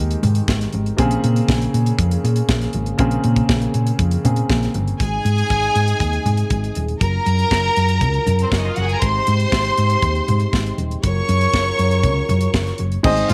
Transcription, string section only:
4.99 6.72 G#4 medium
4.99 6.72 G#5 loud
7.00 8.35 A#4 medium
7.00 8.35 A#5 loud
8.43 8.52 C4 soft
8.43 8.52 C5 medium
8.52 8.60 C#4 medium
8.52 8.60 C#5 medium
8.59 8.68 D#4 medium
8.59 8.68 D#5 medium
8.67 8.77 F4 medium
8.67 8.77 F5 medium
8.76 8.85 F#4 medium
8.76 8.85 F#5 medium
8.85 8.93 G#4 medium
8.85 8.94 G#5 medium
8.93 9.02 A#4 medium
8.93 9.02 A#5 medium
9.02 10.75 C5 medium
9.02 10.75 C6 medium
11.04 12.76 C#5 medium
11.04 12.76 C#6 loud
13.28 13.34 F4 medium
13.28 13.34 F5 medium

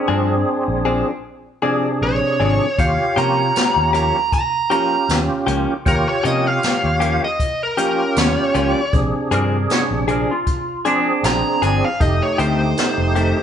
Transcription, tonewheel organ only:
0.00 1.08 C4 medium
0.00 1.08 D4 medium
0.00 1.09 G#4 medium
1.62 2.66 C3 medium
1.62 2.66 D4 medium
1.62 2.67 G#4 medium
2.78 4.17 F4 medium
2.78 4.17 G4 medium
2.78 4.17 C#5 medium
4.70 5.74 C#4 medium
4.70 5.74 F4 medium
4.70 5.74 G4 medium
5.86 7.24 F4 medium
5.86 7.24 G4 medium
5.86 7.24 C#5 medium
7.78 8.81 C#4 medium
7.78 8.82 F4 medium
7.78 8.82 G4 medium
8.93 10.31 C3 medium
8.93 10.31 D4 medium
8.93 10.31 G#4 medium
10.85 11.89 C4 medium
10.85 11.89 D4 medium
10.85 11.89 G#4 medium
12.00 13.38 A3 medium
12.00 13.38 D#4 medium
12.00 13.38 G4 medium

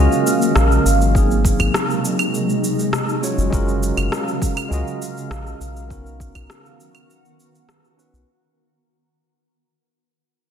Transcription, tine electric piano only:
0.00 1.16 G#3 medium
0.00 1.17 C#4 medium
0.00 1.17 F4 medium
0.00 1.16 F#4 medium
0.00 1.17 A#4 medium
0.00 1.13 D#5 medium
1.13 2.88 F#3 medium
1.13 2.89 A#3 medium
1.13 2.90 C4 medium
1.13 2.90 D#4 medium
1.18 2.91 G#4 medium
3.21 3.48 G#3 medium
3.21 3.49 C#4 medium
3.21 3.49 F4 medium
3.21 3.49 F#4 medium
3.21 3.50 C#5 medium
3.50 4.66 G#3 medium
3.50 4.67 C#4 medium
3.50 4.68 F4 medium
3.50 4.68 F#4 medium
3.55 4.69 A#4 medium
4.69 5.85 G#3 medium
4.69 5.86 C#4 medium
4.69 5.87 F4 medium
4.69 5.87 F#4 medium
4.74 5.88 D#5 medium
5.88 7.64 B3 medium
5.88 7.64 C#4 medium
5.88 7.65 D#4 medium
5.88 7.66 F#4 medium
5.93 7.66 A#4 medium
7.97 8.24 B3 medium
7.97 8.24 C#4 medium
7.97 8.24 D#4 medium
7.97 8.25 F#4 medium
7.97 8.25 B4 medium

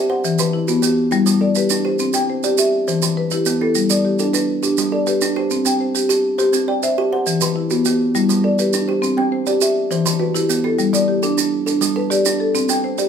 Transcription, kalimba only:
0.00 0.24 G4 medium
0.10 0.54 C5 medium
0.39 0.69 E3 medium
0.68 1.12 F#4 medium
0.82 1.12 B3 medium
1.11 1.41 E4 medium
1.26 1.56 G3 medium
1.41 1.85 A4 medium
1.71 2.00 D4 medium
1.85 2.29 G4 medium
2.14 2.43 C4 medium
2.44 2.88 D5 medium
2.58 2.88 G4 medium
2.88 3.17 C5 medium
3.03 3.32 E3 medium
3.46 3.75 B3 medium
3.61 4.05 E4 medium
3.91 4.20 G3 medium
4.20 4.63 A4 medium
4.34 4.63 D4 medium
4.63 5.07 G4 medium
4.78 5.07 G3 medium
4.92 5.36 A4 medium
5.22 5.51 D4 medium
5.36 5.80 G4 medium
5.65 5.95 C4 medium
6.09 6.39 G4 medium
6.38 6.82 C5 medium
6.53 6.83 C4 medium
6.68 7.12 D5 medium
6.98 7.27 G4 medium
7.13 7.56 C5 medium
7.42 7.71 E3 medium
7.71 8.15 F#4 medium
7.86 8.15 B3 medium
8.15 8.44 E4 medium
8.29 8.59 G3 medium
8.44 8.88 A4 medium
8.74 9.03 D4 medium
8.89 9.32 G4 medium
9.18 9.47 C4 medium
9.47 9.91 D5 medium
9.62 9.91 G4 medium
9.91 10.20 C5 medium
10.06 10.35 E3 medium
10.19 10.64 F#4 medium
10.49 10.79 B3 medium
10.64 11.08 E4 medium
10.94 11.23 G3 medium
11.23 11.65 A4 medium
11.38 11.67 D4 medium
11.66 11.95 A4 medium
11.81 12.11 G3 medium
11.96 12.40 A4 medium
12.26 12.55 D4 medium
12.69 12.99 C4 medium
12.99 13.09 D5 medium

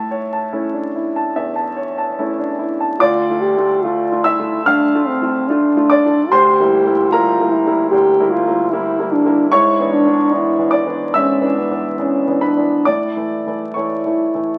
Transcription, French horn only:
2.99 3.43 F4 medium
3.41 3.84 G4 medium
3.82 4.26 F4 medium
4.24 4.65 E4 medium
4.66 5.08 D4 medium
5.06 5.50 C4 medium
5.48 6.32 D4 medium
6.30 7.12 G4 loud
7.11 7.53 F4 medium
7.51 7.90 E4 medium
7.91 8.33 G4 loud
8.31 8.72 F4 medium
8.70 9.14 E4 medium
9.12 9.50 D4 medium
9.50 9.94 E4 medium
9.93 10.36 D4 medium
10.34 10.89 E4 medium
11.17 11.59 C#4 medium
11.58 11.99 B3 medium
11.99 12.44 C#4 medium
12.43 12.89 D4 medium
12.87 14.58 E4 medium

